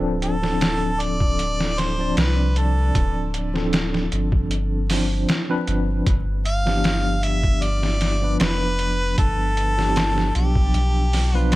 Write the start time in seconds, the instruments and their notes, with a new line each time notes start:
Already playing: sub bass D1, tine electric piano F3 C4 D4 A4 B4
0.22 harmonica A4, closed hi-hat
0.42 tine electric piano F3 C4 D4 A4, snare
0.61 snare, closed hi-hat
1.00 harmonica D5, closed hi-hat
1.20 kick
1.39 closed hi-hat
1.60 snare
1.78 harmonica C5, snare, closed hi-hat
1.98 tine electric piano F3 C4 D4 D5
2.17 sub bass C2, harmonica B4, snare, closed hi-hat
2.56 harmonica A4, closed hi-hat
2.95 sub bass D1, kick, closed hi-hat
3.34 closed hi-hat
3.54 tine electric piano F3 C4 D4 A4, snare
3.73 snare, closed hi-hat
3.94 snare
4.12 sub bass G1, closed hi-hat
4.32 kick
4.51 closed hi-hat
4.90 tine electric piano F3 C4 D4 C5, snare, open hi-hat
5.29 snare, closed hi-hat
5.49 tine electric piano F3 C4 D4 B4
5.67 sub bass G1, closed hi-hat
6.07 sub bass G1, kick, closed hi-hat
6.45 harmonica F5, closed hi-hat
6.66 tine electric piano F3 B3 D4 G4, snare
6.84 snare, closed hi-hat
7.23 harmonica E5, closed hi-hat
7.43 kick
7.62 harmonica D5, closed hi-hat
7.83 snare
8.01 snare, closed hi-hat
8.21 tine electric piano F3 B3 D4 B4
8.40 sub bass F1, harmonica B4, snare, closed hi-hat
8.79 closed hi-hat
9.18 sub bass G1, harmonica A4, kick, closed hi-hat
9.57 closed hi-hat
9.77 tine electric piano F3 B3 D4 G4, snare
9.96 snare, closed hi-hat
10.18 snare
10.35 sub bass B1, harmonica G4, closed hi-hat
10.55 kick
10.74 sub bass B1, closed hi-hat
11.13 snare, open hi-hat
11.34 tine electric piano F3 B3 D4 B4, harmonica F4
11.52 closed hi-hat